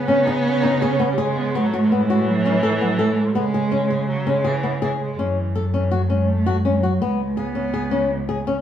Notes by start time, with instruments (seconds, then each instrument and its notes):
Already playing: cello C#3, viola B3
0.08 cello C#4, nylon-string guitar C#4
0.25 cello D#4, nylon-string guitar G#4
0.45 cello C#4
0.63 nylon-string guitar C#4, cello D#4
0.81 cello C#4, nylon-string guitar G#4
0.99 nylon-string guitar B3
1.11 viola G3
1.17 viola G#3, nylon-string guitar G#4
1.36 cello B3
1.55 cello A2 A3, viola F#3, nylon-string guitar B3
1.74 nylon-string guitar F#4
1.84 viola F#3
1.90 viola E3, cello G#3, nylon-string guitar B3
2.10 nylon-string guitar F#4
2.27 cello F#3
2.46 nylon-string guitar C#4
2.63 cello E3, nylon-string guitar A4
2.81 cello F#3, nylon-string guitar B3
2.99 cello A3, nylon-string guitar A4
3.20 cello G#3
3.35 cello C#3, viola G#3, nylon-string guitar B3
3.54 nylon-string guitar G#4
3.72 nylon-string guitar C#4
3.90 nylon-string guitar G#4
4.09 viola F#3
4.27 viola G#3, nylon-string guitar C#4
4.45 viola E3, nylon-string guitar G#4
4.63 nylon-string guitar B3
4.82 viola E3, nylon-string guitar G#4
5.02 viola G#3
5.19 cello F#2 E3, nylon-string guitar C#4
5.55 nylon-string guitar A4
5.73 cello E3, nylon-string guitar C#4
5.91 cello F#3, nylon-string guitar F#4
6.09 cello G#3, nylon-string guitar C#4
6.27 cello A3
6.46 nylon-string guitar F#4
6.63 cello G#3, nylon-string guitar C#4
6.81 cello F#3, nylon-string guitar F#4
7.01 cello C#2 G#3, nylon-string guitar B3
7.37 cello B3, nylon-string guitar G#4
7.55 nylon-string guitar C#4
7.74 nylon-string guitar G#4
7.91 nylon-string guitar C#4
8.29 nylon-string guitar G#4
8.47 nylon-string guitar C#4